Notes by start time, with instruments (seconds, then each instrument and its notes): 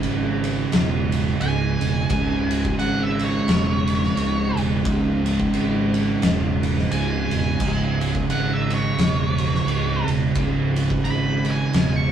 Already playing: distorted electric guitar C#2 G#2 C#3
0.03 fingered electric bass G#1, ride
0.44 ride
0.72 fingered electric bass E1, snare, ride
1.12 ride
1.41 fingered electric bass C#1, lead electric guitar G#5, ride
1.81 fingered electric bass E1, ride
2.10 fingered electric bass C#1, distorted electric guitar C#2 G#2 C#3, kick, ride
2.51 ride
2.65 kick
2.78 fingered electric bass G#1, lead electric guitar F#5, ride
3.03 lead electric guitar E5
3.19 ride
3.25 lead electric guitar C#5
3.48 fingered electric bass E1, snare, ride
3.87 ride
4.04 snare
4.16 fingered electric bass C#1, ride
4.56 fingered electric bass E1, ride
4.85 fingered electric bass C#1, distorted electric guitar C#2 G#2 C#3, kick, ride
5.26 ride
5.40 kick
5.54 fingered electric bass G#1, ride
5.94 ride
6.22 fingered electric bass E1, snare, ride
6.63 ride
6.79 snare
6.91 fingered electric bass C#1, lead electric guitar G#5, ride
7.31 fingered electric bass E1, ride
7.60 fingered electric bass C#1, distorted electric guitar C#2 G#2 C#3, kick, crash
8.01 ride
8.15 kick
8.29 fingered electric bass G#1, lead electric guitar F#5, ride
8.53 lead electric guitar E5
8.70 lead electric guitar C#5, ride
8.98 fingered electric bass E1, snare, ride
9.38 ride
9.55 snare
9.66 fingered electric bass C#1, ride
10.07 fingered electric bass E1, ride
10.35 fingered electric bass C#1, distorted electric guitar C#2 G#2 C#3, kick, ride
10.76 ride
10.90 kick
11.05 fingered electric bass G#1, lead electric guitar B5, ride
11.45 ride
11.51 lead electric guitar G#5
11.73 fingered electric bass E1, snare, ride
11.96 lead electric guitar C#6